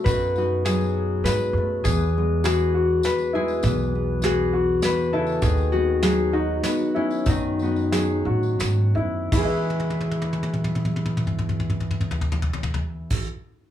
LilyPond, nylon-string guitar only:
\new Staff \with { instrumentName = "Nylon-string guitar" } { \time 3/4 \key e \major \tempo 4 = 99 << { fis'8 <dis' fis'>2 a8 | b8 <gis b>2 gis8 | b8 b2~ b8 | fis'8 <b dis'>2 b8 |
fis'8 <b dis' fis'>2 b8 | <e gis b gis'>2.~ | <e gis b gis'>2~ <e gis b gis'>8 r8 | } \\ { b,4 fis2 | e,4 e2 | e,4 e4 b,8 cis8 | dis4 fis2 |
dis4 fis2 | e,2.~ | e,2~ e,8 r8 | } >> }